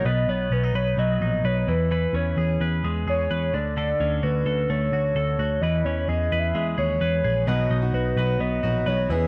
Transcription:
<<
  \new Staff \with { instrumentName = "Soft synth lead" } { \time 4/4 \key b \major \tempo 4 = 129 dis''8 cis''8 b'8 cis''8 dis''4 cis''8 b'8 | b'8 cis''4 r4 cis''4 d''8~ | d''4 b'4 cis''2 | dis''8 cis''8 \tuplet 3/2 { dis''4 e''8 } e''8 cis''4. |
dis''4 b'4 dis''4 cis''8 b'8 | }
  \new Staff \with { instrumentName = "Clean electric guitar" } { \time 4/4 \key b \major <b, b'>8 b8 cis'16 dis'16 b'8 fis8 dis'8 b'8 e8 | <e b'>8 cis'8 gis'8 b'8 gis8 gis'8 b'8 d8 | <d a'>8 cis'8 fis'8 a'8 a8 fis'8 a'8 fis'8 | <e b'>8 cis'8 gis'8 b'8 gis8 gis'8 b'8 gis'8 |
<b, b'>8 dis'8 fis'8 b'8 b8 fis'8 b'8 e8 | }
  \new Staff \with { instrumentName = "Steel-string acoustic guitar" } { \time 4/4 \key b \major r1 | r1 | r1 | r1 |
<b, fis b dis' fis'>8. <b dis' fis'>8. <fis b dis' fis'>4 <fis b dis' fis'>8 <fis b dis' fis'>8 <e b cis' gis'>8 | }
  \new Staff \with { instrumentName = "Picked electric bass" } { \clef bass \time 4/4 \key b \major b,,8 b,,8 b,,8 b,,8 b,,8 ais,,8 b,,8 e,8~ | e,8 e,8 e,8 e,8 e,8 e,8 e,8 d,8~ | d,8 d,8 d,8 d,8 d,8 d,8 d,8 d,8 | e,8 e,8 e,8 e,8 e,8 dis,8 e,8 ais,,8 |
b,,8 b,,8 b,,8 b,,8 b,,8 ais,,8 b,,8 e,8 | }
>>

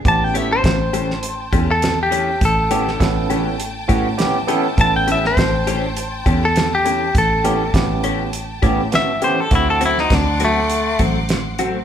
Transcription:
<<
  \new Staff \with { instrumentName = "String section" } { \time 4/4 \key a \mixolydian \tempo 4 = 101 <g'' a''>1~ | <g'' a''>1~ | <g'' a''>1~ | <g'' a''>1 |
<fis'' c''' d'''>1 | }
  \new Staff \with { instrumentName = "Clean electric guitar" } { \time 4/4 \key a \mixolydian a''16 g''16 e''16 c''2 a'8 g'8. | a'4 r2. | a''16 g''16 e''16 c''2 a'8 g'8. | a'4 r2 e''8 c''16 a'16 |
e'16 a'16 e'16 dis'16 d'8 a4 r4. | }
  \new Staff \with { instrumentName = "Tine electric piano" } { \time 4/4 \key a \mixolydian <b cis' e' g'>4~ <b cis' e' g'>16 r2 r8. | r8 <b cis' e' g'>8 <b cis' e' a'>4 r8 <b cis' e' fis'>8 <b cis' e' g'>8 <b cis' e' a'>8 | <b cis' e' a'>4~ <b cis' e' a'>16 r2 r8. | r8 <b cis' e' g'>8 <b cis' e' g'>4 r8 <b cis' e' g'>8 <b cis' e' fis'>8 <b cis' e' g'>8 |
<a c' e' fis'>4~ <a c' e' fis'>16 r2 r8. | }
  \new Staff \with { instrumentName = "Clean electric guitar" } { \time 4/4 \key a \mixolydian r8 <e a cis' g'>8 r8 <e a cis' g'>8 r8 <e a cis' g'>8 r8 <e a cis' g'>8 | r8 <e a cis' g'>8 r8 <e a cis' g'>8 r8 <e a cis' g'>8 r8 <e a cis' g'>8 | r8 <e a cis' g'>8 r8 <e a cis' g'>8 r8 <e a cis' g'>8 r8 <e a cis' g'>8 | r8 <e a cis' g'>8 r8 <e a cis' g'>8 r8 <e a cis' g'>8 r8 <e a cis' g'>8 |
r8 <fis a c' fis'>8 r8 <fis a c' fis'>8 r8 <fis a c' fis'>8 r8 <fis a c' fis'>8 | }
  \new Staff \with { instrumentName = "Fingered electric bass" } { \clef bass \time 4/4 \key a \mixolydian a,,4 a,,4. e,4. | a,,4 a,,4. a,4. | a,,4 a,,4. e,4. | a,,4 a,,4. a,4. |
d,4 d,4. a,,4. | }
  \new DrumStaff \with { instrumentName = "Drums" } \drummode { \time 4/4 <hh bd>8 hh8 <hh bd sn>8 hh16 sn16 hh8 <hh bd>8 <hh sn>8 hh8 | <hh bd>8 hh16 sn16 <hh bd sn>8 hh8 hh8 <hh bd>8 <hh sn>8 hh8 | <hh bd>8 hh16 sn16 <hh bd sn>8 hh8 hh8 <hh bd>8 <hh sn>8 hh8 | <hh bd>8 hh8 <hh bd sn>8 hh8 hh8 <hh bd>8 <hh sn>8 hh8 |
<hh bd>8 hh16 sn16 <hh bd sn>8 hh8 hh8 <hh bd>8 <hh sn>8 hh8 | }
>>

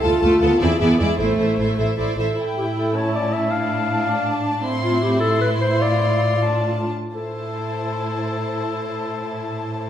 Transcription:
<<
  \new Staff \with { instrumentName = "Violin section" } { \time 6/8 \key a \minor \tempo 4. = 101 f'4. e'4. | c''4. c''8 d''8 e''8 | g''4. a''4. | a''2. |
c'''4. c'''4.~ | c'''4. a''4 r8 | a''2.~ | a''2. | }
  \new Staff \with { instrumentName = "Violin section" } { \time 6/8 \key a \minor <a' a''>8 <a' a''>8 <a' a''>8 <d'' e''>8 <d'' e''>8 <d'' e''>8 | <c'' e''>8 <c'' e''>8 <c'' e''>8 <c'' e''>8 <c'' e''>8 <c'' e''>8 | e'4. cis'4. | d'2. |
e'2. | f'4. d'4 r8 | c''2.~ | c''2. | }
  \new Staff \with { instrumentName = "Clarinet" } { \time 6/8 \key a \minor r2. | r2. | r8 g'8 a'8 cis''8 d''8 e''8 | f''2~ f''8 r8 |
r8 f'8 g'8 a'8 b'8 c''8 | d''2~ d''8 r8 | a'2.~ | a'2. | }
  \new Staff \with { instrumentName = "Viola section" } { \time 6/8 \key a \minor <f' a'>8 <f' a'>8 <f' a'>8 <e' gis'>8 <e' gis'>8 <e' gis'>8 | <e' a'>8 <e' a'>8 <e' a'>8 <e' a'>8 <e' a'>8 <e' a'>8 | e'2.~ | e'4. d'4. |
c'4. e'4.~ | e'4. f'4 r8 | e'2.~ | e'2. | }
  \new Staff \with { instrumentName = "Cello section" } { \time 6/8 \key a \minor r8 a8 b8 c'8 b8 gis8 | a4. r4. | a,2.~ | a,2. |
a,2.~ | a,2~ a,8 r8 | a,2.~ | a,2. | }
  \new Staff \with { instrumentName = "Double bass section" } { \clef bass \time 6/8 \key a \minor d,8 d,8 d,8 e,8 e,8 e,8 | a,,8 a,,8 a,,8 a,,8 a,,8 a,,8 | r2. | r2. |
r2. | r2. | r2. | r2. | }
>>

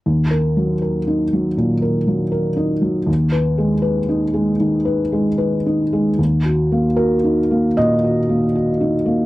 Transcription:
\new Staff \with { instrumentName = "Felt piano" } { \time 4/4 \key ees \minor \tempo 4 = 79 << { r1 | r1 | r4 bes'4 ees''2 | } \\ { \tuplet 3/2 { ees,8 bes'8 ges8 bes'8 ees'8 ges8 bes,8 bes'8 ges8 bes'8 ees'8 ges8 } | \tuplet 3/2 { ees,8 ces''8 aes8 ces''8 ees'8 aes8 ees8 ces''8 aes8 ces''8 ees'8 aes8 } | \tuplet 3/2 { ees,8 ges'8 bes8 ges'8 ees'8 bes8 bes,8 ges'8 bes8 ges'8 ees'8 bes8 } | } >> }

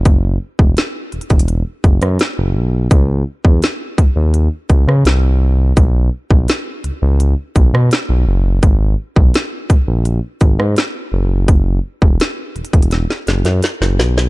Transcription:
<<
  \new Staff \with { instrumentName = "Analog synth bass" } { \clef bass \time 4/4 \key e \lydian \tempo 4 = 84 fis,,8 r16 e,,16 r8 e,,16 e,,8 r16 fis,,16 fis,16 r16 fis,,16 b,,8 | cis,8 r16 e,16 r8 dis,16 dis,8 r16 cis,16 cis16 bis,,4 | b,,8 r16 b,,16 r8 cis,16 cis,8 r16 b,,16 b,16 r16 b,,16 fis,,8 | gis,,8 r16 b,,16 r8 ais,,16 ais,,8 r16 gis,,16 gis,16 r8 fis,,8~ |
fis,,8 r16 e,,16 r8 e,,16 e,,8 r16 fis,,16 fis,16 r16 fis,,16 b,,8 | }
  \new DrumStaff \with { instrumentName = "Drums" } \drummode { \time 4/4 <hh bd>8. bd16 <hh sn>8 hh32 hh32 <hh bd>32 hh32 hh8 <hh bd>16 <hh ss>16 <hh sn>4 | <hh bd>8. bd16 <hh sn>8 <hh bd>8 hh8 <hh bd>16 ss16 <hh sn>4 | <hh bd>8. bd16 <hh sn>8 hh8 hh8 <hh bd>16 ss16 <hh sn>4 | <hh bd>8. bd16 <hh sn>8 <hh bd>8 hh8 <hh bd>16 ss16 <hh sn>4 |
<hh bd>8. bd16 <hh sn>8 hh32 hh32 <hh bd>32 hh32 <hh sn>16 sn16 <hh sn>16 <hh sn>16 <hh sn>16 sn16 sn16 sn16 | }
>>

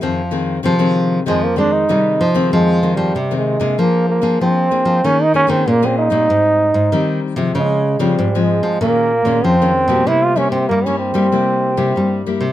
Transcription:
<<
  \new Staff \with { instrumentName = "Trombone" } { \time 4/4 \key f \minor \tempo 4 = 96 r2 aes16 bes16 d'16 ees'4 r16 | \tuplet 3/2 { aes4 g8~ g8 aes4 } bes8 bes8 c'4 | des'16 ees'16 des'16 c'16 bes16 c'16 ees'2 r8 | \tuplet 3/2 { aes4 g8~ g8 aes4 } bes4 c'4 |
e'16 f'16 des'16 c'16 bes16 des'16 c'2 r8 | }
  \new Staff \with { instrumentName = "Nylon-string guitar" } { \clef bass \time 4/4 \key f \minor << { <ees aes c'>16 r16 <ees aes c'>8 <ees aes c'>16 <ees aes c'>8. <ees aes c'>16 r16 <ees aes c'>8 <ees aes c'>8 r16 <ees aes c'>16~ | <ees aes c'>8 <ees aes c'>8 r16 <ees aes c'>8 <bes d' aes'>4 <bes d' aes'>8. <bes d' aes'>8 | <bes des' aes'>16 r16 <bes des' aes'>16 <bes des' aes'>8 <bes des' aes'>8 <g c' ees'>4 r16 <g c' ees'>8. <f aes c'>16~ | <f aes c'>8 r16 <f aes c'>8 <f aes c'>8. <ees aes des'>8 r16 <ees aes des'>8 <ees aes des'>8 <g bes e'>16~ |
<g bes e'>8 <g bes e'>8. <g bes e'>8 <g bes e'>16 <g bes e'>8. <g bes e'>8. <g bes e'>16 r16 | } \\ { f,4 c4 f,4 c4 | f,4 c4 f4 f4 | ees4 bes,4 aes,4 ees4 | des4 aes,4 bes,4 f,4 |
c4 g,4 c4 g,4 | } >> }
  \new Staff \with { instrumentName = "Nylon-string guitar" } { \clef bass \time 4/4 \key f \minor f4 f4 f8 aes8 g8 f8 | f8. f16 c8. c16 f8. f16 f8 r16 f16 | ees8. ees16 bes,8. bes,16 aes,8. aes,16 ees8 r16 c16 | des8. des16 aes,8. f16 bes,8. bes,16 f8 r16 b,16 |
c8. c16 g8. g4 c16 g8 r16 c16 | }
>>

